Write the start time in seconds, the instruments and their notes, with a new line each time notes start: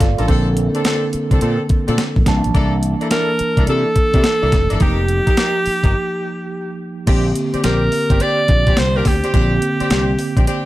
Already playing: tine electric piano G3 A#3 F4 D5
0.00 fretless electric bass G1, tine electric piano A4 F5, kick, snare, closed hi-hat
0.18 fretless electric bass A1, horn section A#3 F4 A4, tine electric piano D4 A#4, closed hi-hat
0.28 fretless electric bass A#1, tine electric piano D3 A#3 C4 A4, horn section C4 D4 A4, kick, closed hi-hat
0.57 closed hi-hat
0.75 horn section C4 D4 A4, closed hi-hat
0.85 horn section C4 D4 A4, snare, closed hi-hat
1.13 muted fretless electric bass stroke, closed hi-hat
1.31 fretless electric bass C2, horn section C4 D4 A4, kick, closed hi-hat
1.41 fretless electric bass A#2, horn section C4 D4 A4, closed hi-hat
1.69 muted fretless electric bass stroke, kick, closed hi-hat
1.87 fretless electric bass A#2, horn section C4 D4 A4, closed hi-hat
1.98 snare, closed hi-hat
2.16 fretless electric bass A#1, kick
2.26 fretless electric bass C2, tine electric piano E3 A#3 D4 A5, kick, snare, closed hi-hat
2.44 fretless electric bass A#1, closed hi-hat
2.55 fretless electric bass C2, horn section A#3 D4 E4 A4, kick, closed hi-hat
2.83 closed hi-hat
3.01 horn section A#3 D4 E4 A4, closed hi-hat
3.10 horn section A#3 D4 E4 A4, alto saxophone A#4, snare, closed hi-hat
3.39 muted fretless electric bass stroke, closed hi-hat
3.57 fretless electric bass C2, horn section A#3 D4 E4 A4, kick, closed hi-hat
3.67 fretless electric bass C3, horn section A#3 D4 E4 A4, alto saxophone A4, closed hi-hat
3.96 muted fretless electric bass stroke, kick, closed hi-hat
4.14 fretless electric bass C3, horn section A#3 D4 E4 A4, kick, closed hi-hat
4.24 snare, closed hi-hat
4.42 fretless electric bass C2, horn section A#3 D4 E4 A4
4.52 fretless electric bass F1, kick, snare, closed hi-hat
4.70 fretless electric bass G1, horn section A#3 D4 E4 A4, closed hi-hat
4.80 fretless electric bass F1, tine electric piano F3 A#3 D#4 G4, horn section A#3 D#4 G4, alto saxophone G4, kick, closed hi-hat
5.08 closed hi-hat
5.27 horn section A#3 D#4 G4, kick, closed hi-hat
5.37 horn section A#3 D#4 G4, snare, closed hi-hat
5.66 muted fretless electric bass stroke, open hi-hat
5.84 fretless electric bass G1, horn section A#3 D#4 G4, kick, closed hi-hat
7.06 fretless electric bass A#1, tine electric piano D3 A#3 C4 G4, horn section C4 D4 G4, kick, closed hi-hat, crash
7.36 closed hi-hat
7.53 horn section C4 D4 G4, muted fretless electric bass stroke, closed hi-hat
7.63 fretless electric bass A#1, horn section C4 D4 G4, alto saxophone A#4, snare, closed hi-hat
7.92 open hi-hat
8.10 fretless electric bass G1, horn section C4 D4 G4, kick, closed hi-hat
8.20 horn section C4 D4 G4, alto saxophone D5, closed hi-hat
8.48 fretless electric bass A#1, kick, closed hi-hat
8.67 horn section C4 D4 G4, kick, closed hi-hat
8.77 fretless electric bass C2, alto saxophone C5, snare, closed hi-hat
8.95 horn section C4 D4 G4, alto saxophone A#4
9.05 fretless electric bass D2, alto saxophone G4, kick, snare, open hi-hat
9.24 horn section C4 D4 G4, closed hi-hat
9.34 fretless electric bass A#1, tine electric piano D3 A#3 C4 G4, horn section C4 D4 G4, kick, closed hi-hat
9.62 closed hi-hat
9.80 horn section C4 D4 G4, muted fretless electric bass stroke, closed hi-hat
9.90 fretless electric bass C2, horn section C4 D4 G4, snare, closed hi-hat
10.19 open hi-hat
10.37 fretless electric bass A#1, horn section C4 D4 G4, kick, closed hi-hat
10.47 horn section C4 D4 G4, closed hi-hat